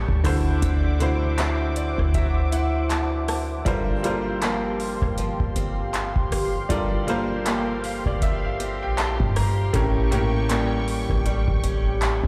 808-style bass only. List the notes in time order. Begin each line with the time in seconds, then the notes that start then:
0.09 D2
0.62 D2
1.98 D2
3.66 G1
5.02 G1
5.40 G1
6.16 G1
6.70 G1
8.06 G1
8.82 A#1
9.20 G2
9.74 A1
11.10 A1
11.48 A1
12.24 D2